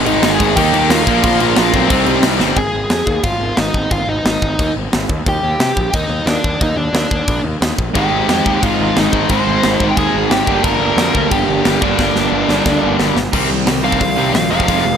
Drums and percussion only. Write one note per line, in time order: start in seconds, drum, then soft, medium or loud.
0.06 crash medium
0.23 snare loud
0.23 crash loud
0.40 kick loud
0.40 crash medium
0.57 kick loud
0.57 crash loud
0.74 crash medium
0.90 snare loud
0.90 crash loud
1.07 kick medium
1.07 crash medium
1.23 kick loud
1.23 crash medium
1.40 crash medium
1.56 snare loud
1.56 crash medium
1.74 kick medium
1.74 crash medium
1.90 kick loud
1.90 crash medium
2.06 crash medium
2.23 snare loud
2.23 crash medium
2.40 snare medium
2.56 kick loud
2.56 crash medium
2.90 snare loud
2.90 crash medium
3.07 kick medium
3.23 kick loud
3.23 crash medium
3.57 snare loud
3.57 crash medium
3.74 kick medium
3.91 kick loud
3.91 crash medium
4.25 snare loud
4.25 crash medium
4.42 kick medium
4.59 kick loud
4.59 crash medium
4.93 snare loud
4.93 crash medium
5.09 kick medium
5.26 kick loud
5.26 crash medium
5.60 snare loud
5.60 crash medium
5.77 kick medium
5.93 kick loud
5.93 crash medium
6.27 snare loud
6.27 crash medium
6.44 kick medium
6.61 kick loud
6.61 crash medium
6.94 snare loud
6.94 crash medium
7.11 kick medium
7.28 kick loud
7.28 crash medium
7.62 snare loud
7.62 crash medium
7.79 kick medium
7.95 kick loud
7.95 crash medium
8.29 snare loud
8.29 crash medium
8.46 kick medium
8.63 kick loud
8.63 crash medium
8.96 snare loud
8.96 crash medium
9.13 kick medium
9.29 kick loud
9.29 crash medium
9.63 snare loud
9.63 crash medium
9.80 kick medium
9.97 kick loud
9.97 crash medium
10.31 snare loud
10.31 crash medium
10.47 kick medium
10.64 kick loud
10.64 crash medium
10.98 snare loud
10.98 crash medium
11.15 kick medium
11.31 kick loud
11.31 crash medium
11.65 snare loud
11.65 crash medium
11.82 kick medium
11.99 kick loud
11.99 snare medium
12.16 snare medium
12.49 snare medium
12.66 kick loud
12.66 snare medium
13.00 snare loud
13.16 snare medium
13.33 kick loud
13.33 crash loud
13.67 snare loud
13.67 open hi-hat medium
13.92 kick medium
14.01 kick loud
14.01 open hi-hat medium
14.35 snare loud
14.35 open hi-hat medium
14.60 kick medium
14.68 kick medium
14.68 open hi-hat medium